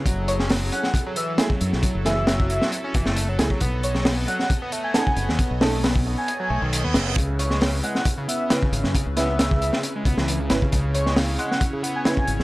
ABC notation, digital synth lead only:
X:1
M:4/4
L:1/16
Q:"Swing 16ths" 1/4=135
K:C#m
V:1 name="Digital synth lead"
z2 c z3 f f z2 e z4 z | z2 e6 z8 | z2 c z3 f f z3 g g g z2 | z6 z g4 z4 z |
z2 c z3 f f z2 e z4 z | z2 e6 z8 | z2 c z3 f f z3 g g g z2 |]